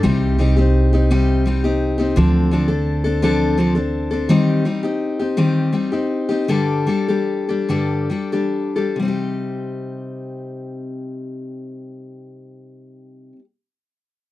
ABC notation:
X:1
M:6/8
L:1/16
Q:3/8=52
K:Cdor
V:1 name="Steel-string acoustic guitar"
[C,G,CEG]2 [G,CEG] [CEG]2 [CEG] [C,G,CEG]2 [G,CEG] [CEG]2 [CEG] | [D,F,CDA]2 [F,CDA] [CDA]2 [CDA] [D,F,CDA]2 [F,CDA] [CDA]2 [CDA] | [E,G,CEG]2 [G,CEG] [CEG]2 [CEG] [E,G,CEG]2 [G,CEG] [CEG]2 [CEG] | [G,,D,G,DGA]2 [G,DGA] [G,DGA]2 [G,DGA] [G,,D,G,DGA]2 [G,DGA] [G,DGA]2 [G,DGA] |
[C,G,CEG]12- | [C,G,CEG]12 |]
V:2 name="Upright bass" clef=bass
C,,12 | D,,12 | z12 | z12 |
z12 | z12 |]